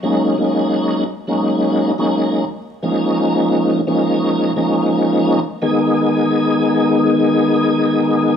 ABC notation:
X:1
M:4/4
L:1/16
Q:"Swing 16ths" 1/4=86
K:G#dor
V:1 name="Tonewheel organ"
[F,G,A,CD]2 [F,G,A,CD]4 z [F,G,A,CD]4 [F,G,A,CD]3 z2 | [E,G,A,CD]6 [E,G,A,CD]4 [E,G,A,CD]4- [E,G,A,CD] z | [D,G,B,DG]16 |]